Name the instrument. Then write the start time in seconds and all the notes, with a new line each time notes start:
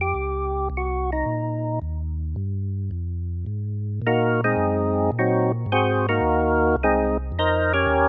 tonewheel organ
Already playing: F2
0.01 G4
0.15 C#2
0.70 C2
0.77 F#4
1.13 D#4
1.26 A#2
1.82 D#2
2.36 G2
2.91 F2
3.46 G#2
4.02 A#2
4.07 A#3 D#4 F#4 A#4
4.44 G#3 C4 D#4 G#4
4.56 F#2
5.12 A#2
5.19 F#3 C4 D#4 F#4
5.66 G#2
5.72 C4 F#4 G#4 C5
6.09 A#3 D#4 F#4 A#4
6.22 D#2
6.77 C2
6.83 G#3 C4 D#4 G#4
7.32 F2
7.39 D#4 A#4 C5 D#5
7.73 C#4 G4 A#4 C#5
7.87 D#2